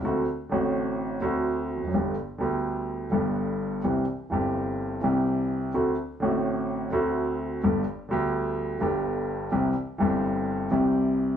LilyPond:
\new Staff \with { instrumentName = "Grand piano" } { \clef bass \time 4/4 \key c \major \tempo 4 = 126 << { <d, d a c' fis'>8 r8 <a,, a, d a c' fis'>4. <d, d a c' fis'>4. | <g,, g, d g b g'>8 r8 <d, d g b g'>4. <g,, g, d g b g'>4. | <c, c e g c' g'>8 r8 <g,, g, e g c' g'>4. <c, c e g c' g'>4. | <d, d a c' fis'>8 r8 <a,, a, d a c' fis'>4. <d, d a c' fis'>4. |
<g,, g, d g b g'>8 r8 <d, d g b g'>4. <g,, g, d g b g'>4. | <c, c e g c' g'>8 r8 <g,, g, e g c' g'>4. <c, c e g c' g'>4. | } \\ { r2. r8 r32 e,32 f,32 fis,32 | r1 | r1 | r1 |
r1 | r1 | } >> }